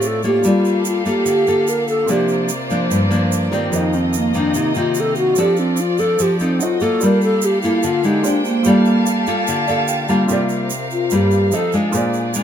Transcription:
Already playing: A2 A3 C4 F4 A4 C5 D5
0.02 shaker
0.07 A4
0.23 A#3 F4 G4 A4, shaker
0.41 G3 A#3 F4 G4 A4 F5, shaker
0.47 F4 D5
0.65 shaker
0.85 F4, shaker
1.06 A#3 F4 G4 A4, shaker
1.25 D3, shaker
1.47 A#3 F4 A4, shaker
1.67 A#4, shaker
1.88 A4, shaker
2.05 C3 C4 F4 G4 C5 D5, shaker
2.09 F3 A#3 D4 G4 A#4 D5
2.28 shaker
2.49 shaker
2.70 F3 A#3 D4, shaker
2.91 G2, shaker
3.10 F3 A#3 D4, shaker
3.32 shaker
3.51 D#3 A#3 C4 F4 G4 A#4 D5, shaker
3.70 F2 F3 F4 G4 A#4 D#5, shaker
3.74 D#4 C5 D#5
3.93 C4, shaker
4.13 shaker
4.18 A#3
4.34 D#3 A#3 C4 D4, shaker
4.54 C3 D#4, shaker
4.75 D#3 A#3 C4 F4, shaker
4.94 shaker
5.00 A4
5.15 F#4, shaker
5.34 C4 F4 A4 C5 D5, shaker
5.38 F3 C4 D4 G4 A4 D5
5.56 C4, shaker
5.77 F4, shaker
5.98 C4 D4 A4, shaker
6.19 F3 G4, shaker
6.39 C4 D#4 A4, shaker
6.59 F#3 F#4 A4 C5 D#5, shaker
6.63 F4
6.80 A#3 F4 A4, shaker
6.99 G3 A#3 F4 G4 A4 F5, shaker
7.05 A#4 D5
7.21 A4, shaker
7.42 G4, shaker
7.62 A#3 E4 F4 A4, shaker
7.83 D3 F4, shaker
8.04 G#3 D4 D#4 G4, shaker
8.23 A#3 D4 F4 G4 C5 D5 G5, shaker
8.27 D4
8.45 A#3, shaker
8.62 G3 F4 A4, shaker
8.66 G3 A#3 F4 G4 A4 D5 F5 A5
8.85 shaker
9.06 shaker
9.27 A#3 F4 A4, shaker
9.47 D3, shaker
9.67 A#3 F4 A4 D5, shaker
9.77 F5
9.88 G5, shaker
10.08 G3 A#3 F4 A5, shaker
10.26 C3 C4 F4 G4 A#4 F5, shaker
10.31 A#4 D5
10.49 shaker
10.70 shaker
10.91 F4, shaker
11.10 G2 G3 A#3 F4, shaker
11.15 G4
11.31 shaker
11.51 F3 C4 D#4 G4 A4 C5 D#5, shaker
11.55 A4
11.72 G#3 D4 F4, shaker
11.91 A#2 A#3 F4 G#4 D5, shaker
11.95 C5 D5
12.14 shaker
12.34 G#3 D4 F4, shaker

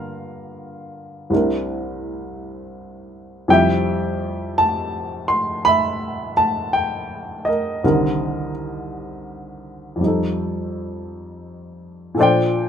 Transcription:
Already playing: G2 D3 A#3 F4 A#4 F5 F#5
1.30 C2 C3 D4 E4
1.35 A#4
3.48 F2 C3 G3 E4 G4 G5
3.53 E5
4.58 A5
5.28 C6
5.65 E5 B5
6.37 A5
6.73 G5
7.45 A#4 D#5
7.84 C2 C3 D3 D#3 A#4
9.96 F2 F3
10.01 G3 D#4
10.07 A4
12.15 A#2 F3 A4
12.19 D4 C5 D5 G5

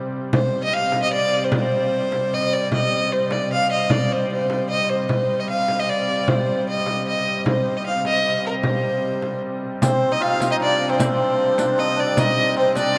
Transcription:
Already playing: C3 G3
0.33 C3 G3 C5, frame drum
0.53 frame drum
0.64 D#5
0.73 F5
0.92 frame drum
1.02 D#5
1.12 D5, frame drum
1.44 C5
1.52 C5, frame drum
1.72 frame drum
2.12 frame drum
2.32 D#5, frame drum
2.53 D5
2.72 D#5, frame drum
2.92 frame drum
3.12 C5
3.31 D5, frame drum
3.51 F5, frame drum
3.72 D#5
3.90 D5, frame drum
4.10 C5, frame drum
4.32 C5
4.50 frame drum
4.70 D#5
4.89 C5, frame drum
5.09 C3 G3 C5, frame drum
5.29 frame drum
5.39 D#5
5.49 F5
5.68 frame drum
5.79 D#5
5.88 D5, frame drum
6.28 C5, frame drum
6.47 frame drum
6.69 D#5
6.86 frame drum
7.07 D#5, frame drum
7.46 C5, frame drum
7.66 frame drum
7.77 D#5
7.86 F5
8.05 D#5, frame drum
8.24 frame drum
8.46 A#4
8.63 C5, frame drum
9.22 frame drum
9.82 C3 G3 C4 C5, riq, frame drum
10.02 frame drum
10.11 D#4 D#5
10.20 F4 F5
10.40 riq, frame drum
10.50 D#4 D#5
10.60 D4 D5, frame drum
10.90 C4 C5
10.99 C4 C5, riq, frame drum
11.19 frame drum
11.58 D4, riq, frame drum
11.78 D#4 D#5, frame drum
11.96 D4 D5
12.17 D#4 D#5, riq, frame drum
12.37 frame drum
12.56 C4 C5
12.75 D4 D5, riq, frame drum

